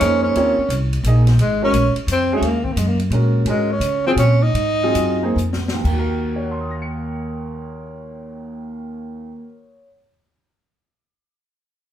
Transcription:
0.00 upright bass F2, grand piano A#3 D#4 G#4 C5, tenor saxophone C#4, hi-hat pedal, ride
0.23 tenor saxophone C#4
0.35 upright bass D#2, grand piano C4 F4 A#4 C#5, ride
0.58 muted upright bass stroke
0.69 upright bass C2, hi-hat pedal, ride
0.93 ride
1.03 upright bass A#1, grand piano A#3 D#4 G#4 D#5, hi-hat pedal, ride
1.27 snare, ride
1.38 upright bass G#1, tenor saxophone G#3, ride
1.62 grand piano G#3 C#4 F#4 A#4, tenor saxophone C#4
1.73 upright bass A#1, hi-hat pedal, ride
1.95 muted upright bass stroke, ride
2.07 upright bass F2, hi-hat pedal, ride
2.12 tenor saxophone C4
2.33 grand piano G#3 C#4 F#4 G#4, tenor saxophone A#3
2.41 upright bass D#2, ride
2.65 tenor saxophone C4, kick
2.72 upright bass F#2, tenor saxophone A#3
2.77 tenor saxophone G#3, hi-hat pedal, ride
2.88 tenor saxophone A#3
3.00 ride
3.10 upright bass A#2, grand piano G#3 C#4 F#4 A#4, ride
3.45 upright bass G#2, grand piano G#3 C#4 F#4 A#4, ride
3.49 tenor saxophone G#3
3.72 tenor saxophone C#4
3.80 upright bass C#3, hi-hat pedal, ride
4.06 grand piano F#3 C4 F4 G#4, tenor saxophone C4
4.16 upright bass A#2, tenor saxophone C#4, hi-hat pedal, ride
4.43 tenor saxophone D#4
4.54 upright bass G#2, ride
4.83 grand piano F#3 C4 F4 G#4
4.95 upright bass F#2, hi-hat pedal, ride
5.23 grand piano A#3 D#4 G#4 C5
5.36 upright bass F2, hi-hat pedal
5.53 snare
5.68 snare
5.73 grand piano D#2
5.80 grand piano D#3
5.84 upright bass D#2, grand piano A#3, kick, crash
5.92 grand piano F#4
5.99 grand piano A#4
6.36 grand piano C#5
6.44 grand piano F#5
6.52 grand piano C6
6.61 grand piano D#6
6.71 grand piano A#6
6.82 grand piano C#7

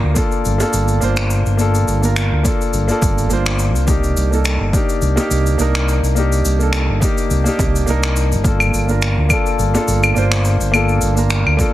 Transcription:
Already playing: grand piano A#3 D4 F4 A#4
0.04 fingered electric bass D2
0.14 grand piano A#3 D4 F4 A4, kick, cabasa
0.32 cabasa
0.45 fingered electric bass G1, cabasa
0.58 grand piano A#3 D4 F4 A4, high bongo, cabasa
0.73 fingered electric bass G1, cabasa
0.88 cabasa
1.00 fingered electric bass G1, grand piano A#3 D4 F4 C5, cabasa
1.17 finger snap, cabasa
1.30 cabasa
1.46 fingered electric bass G1, cabasa
1.57 grand piano A#3 D4 F4 A4, cabasa
1.75 cabasa
1.88 fingered electric bass G1, cabasa
2.02 grand piano A#3 D4 F4 A#4, cabasa
2.16 finger snap, cabasa
2.32 fingered electric bass D2
2.43 grand piano A#3 D4 F4, kick, cabasa
2.48 grand piano A4
2.61 cabasa
2.73 fingered electric bass G1, cabasa
2.88 grand piano A#3 D4 F4 A4, cabasa
3.02 fingered electric bass G1, kick, cabasa
3.18 cabasa
3.30 fingered electric bass G1, grand piano A#3 D4 F4 C5, cabasa
3.46 finger snap, cabasa
3.59 cabasa
3.75 fingered electric bass C2, cabasa
3.87 grand piano A#3 D4 D#4 G4, kick, cabasa
4.04 cabasa
4.17 fingered electric bass C2, cabasa
4.31 grand piano A#3 D4 D#4 A4, cabasa
4.45 finger snap, cabasa
4.61 fingered electric bass G1
4.72 grand piano A#3 D4 D#4 G4, kick, cabasa
4.89 cabasa
5.02 fingered electric bass C2, cabasa
5.16 grand piano A#3 D4 D#4, high bongo, cabasa
5.20 grand piano G4
5.31 fingered electric bass C2, cabasa
5.46 cabasa
5.58 fingered electric bass C2, grand piano A#3 D4 D#4 A#4, cabasa
5.75 finger snap, cabasa
5.88 cabasa
6.03 fingered electric bass C2, cabasa
6.15 grand piano A#3 D4 D#4 G4, cabasa
6.32 cabasa
6.45 fingered electric bass C2, cabasa
6.59 grand piano A#3 D4 D#4 A4, cabasa
6.73 finger snap, cabasa
6.89 fingered electric bass G1
7.00 grand piano A#3 D4 D#4 G4, kick, cabasa
7.18 cabasa
7.30 fingered electric bass C2, cabasa
7.44 grand piano A#3 D4 D#4 G4, cabasa
7.59 fingered electric bass C2, kick, high bongo, cabasa
7.76 cabasa
7.86 fingered electric bass C2, grand piano A#3 D4 D#4, cabasa
7.90 grand piano A#4
8.03 finger snap, cabasa
8.16 cabasa
8.32 fingered electric bass G1, cabasa
8.44 grand piano A#3 D4 F4 A4, kick, cabasa
8.60 cabasa, claves
8.74 fingered electric bass G1, cabasa
8.87 grand piano A#3 D4 F4 A#4, cabasa
9.02 finger snap, cabasa
9.18 fingered electric bass D2
9.29 grand piano A#3 D4 F4, kick, cabasa, claves
9.33 grand piano A4
9.46 cabasa
9.59 fingered electric bass G1, cabasa
9.74 grand piano A#3 D4 F4 A4, high bongo, cabasa
9.88 fingered electric bass G1, cabasa
10.03 cabasa, claves
10.14 fingered electric bass G1, grand piano A#3 D4 F4 C5, cabasa
10.32 finger snap, cabasa
10.45 cabasa
10.60 fingered electric bass G1, cabasa
10.72 grand piano A#3 D4 F4, cabasa, claves
10.76 grand piano A4
10.88 cabasa
11.01 fingered electric bass G1, cabasa
11.15 grand piano A#3 D4 F4 A#4, cabasa
11.30 finger snap, cabasa
11.46 fingered electric bass D2, claves
11.57 grand piano A#3 D4 F4 A4, kick, cabasa

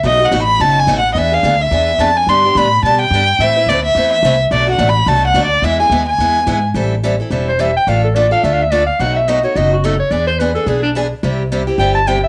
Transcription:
0.03 upright bass B1, steel-string acoustic guitar B2 F#3 A3 D#4 F#4, violin D#5
0.19 steel-string acoustic guitar A3 D#4 F#4
0.25 violin F#5
0.31 upright bass A1, steel-string acoustic guitar B2 F#3 A3 D#4 F#4
0.43 violin B5
0.60 upright bass F#1, steel-string acoustic guitar B2 F#3 A3 D#4 F#4, violin A5
0.79 violin G#5
0.87 upright bass A1, steel-string acoustic guitar B2 F#3 A3 D#4 F#4
0.99 violin F#5
1.14 upright bass E2, steel-string acoustic guitar E3 B3 D4 G#4, violin D#5
1.18 violin E5
1.32 steel-string acoustic guitar B3 D4 G#4, violin F5
1.43 upright bass D2, steel-string acoustic guitar E3 B3 D4 G#4
1.62 violin E5
1.71 upright bass E2, steel-string acoustic guitar E3 B3 D4 G#4
1.98 upright bass F2, steel-string acoustic guitar E3 B3 D4 G#4, violin A5
2.17 violin G#5
2.27 upright bass G2, steel-string acoustic guitar D3 G3 B3 D4 G4, violin C6
2.45 steel-string acoustic guitar B3 D4 G4
2.55 upright bass A2, steel-string acoustic guitar D3 G3 B3 D4 G4, violin B5
2.83 upright bass B2, steel-string acoustic guitar D3 G3 B3 D4 G4, violin A5
3.01 violin G5
3.10 upright bass G2, steel-string acoustic guitar D3 G3 B3
3.14 steel-string acoustic guitar D4 G4
3.39 upright bass A2, steel-string acoustic guitar E3 A3 C4 E4 B4, violin E5
3.56 steel-string acoustic guitar C4 E4 B4
3.66 upright bass D2, steel-string acoustic guitar E3 A3 C4 E4, violin D5
3.70 steel-string acoustic guitar B4
3.85 violin E5
3.95 upright bass E2, steel-string acoustic guitar E3 A3 C4 E4 B4
4.13 violin E5
4.23 upright bass C2, steel-string acoustic guitar E3 A3 C4 E4 B4
4.51 upright bass B1, steel-string acoustic guitar B2 F#3 A3 D4 F#4, violin D5
4.67 steel-string acoustic guitar A3 D4 F#4
4.72 violin F#5
4.78 upright bass A1, steel-string acoustic guitar B2 F#3 A3 D4 F#4
4.89 violin B5
5.06 upright bass C2, steel-string acoustic guitar B2 F#3 A3 D4 F#4, violin A5
5.27 violin F#5
5.34 upright bass D2, steel-string acoustic guitar B2 F#3 A3 D4 F#4
5.45 violin D5
5.62 upright bass E2, steel-string acoustic guitar E3 G#3 B3 E4 G#4, violin E5
5.80 steel-string acoustic guitar B3 E4 G#4, violin G#5
5.90 upright bass D#2, steel-string acoustic guitar E3 G#3 B3 E4 G#4
6.09 violin G#5
6.18 upright bass E2, steel-string acoustic guitar E3 G#3 B3 E4 G#4
6.47 upright bass G#2, steel-string acoustic guitar E3 G#3 B3 E4 G#4
6.74 upright bass A1, steel-string acoustic guitar E3 G3 C4 E4 A4
7.03 steel-string acoustic guitar E3 G3 C4 E4 A4
7.20 steel-string acoustic guitar C4 E4 A4
7.30 upright bass E1, steel-string acoustic guitar E3 G3 C4 E4 A4
7.49 clarinet C5
7.59 steel-string acoustic guitar E3 G3 C4 E4 A4, clarinet E5
7.77 clarinet G5
7.87 upright bass A1, steel-string acoustic guitar D3 A3 D4 F4 A4, clarinet F5
8.04 clarinet A4
8.15 steel-string acoustic guitar D3 A3 D4 F4 A4, clarinet D5
8.31 steel-string acoustic guitar D4 F4 A4, clarinet F5
8.43 upright bass D2, steel-string acoustic guitar D3 A3 D4 F4 A4, clarinet E5
8.53 clarinet F5
8.62 clarinet E5
8.71 steel-string acoustic guitar D3 A3 D4 F4 A4, clarinet D5
8.87 clarinet F5
8.99 upright bass B1, steel-string acoustic guitar B2 F#3 A3 D#4 F#4, clarinet F#5
9.16 clarinet E5
9.28 steel-string acoustic guitar B2 F#3 A3 D#4 F#4, clarinet D#5
9.43 steel-string acoustic guitar A3 D#4 F#4, clarinet C#5
9.56 upright bass F#1, steel-string acoustic guitar B2 F#3 A3 D#4 F#4, clarinet D#5
9.73 clarinet F#4
9.84 steel-string acoustic guitar B2 F#3 A3 D#4 F#4, clarinet A4
9.99 clarinet C#5
10.11 upright bass E2, steel-string acoustic guitar E3 B3 D4 G#4, clarinet D5
10.27 clarinet C5
10.39 steel-string acoustic guitar E3 B3 D4 G#4, clarinet B4
10.55 steel-string acoustic guitar B3 D4 G#4, clarinet A4
10.66 upright bass B1, steel-string acoustic guitar E3 B3 D4 G#4, clarinet G#4
10.83 clarinet D4
10.95 steel-string acoustic guitar E3 B3 D4 G#4
11.23 upright bass C2, steel-string acoustic guitar C3 G3 C4 E4 G4
11.52 steel-string acoustic guitar C3 G3 C4 E4 G4
11.67 steel-string acoustic guitar C4 E4 G4
11.78 upright bass G1, steel-string acoustic guitar C3 G3 C4 E4 G4, clarinet G5
11.95 clarinet A5
12.07 steel-string acoustic guitar C3 G3 C4 E4 G4, clarinet G5
12.24 clarinet E5

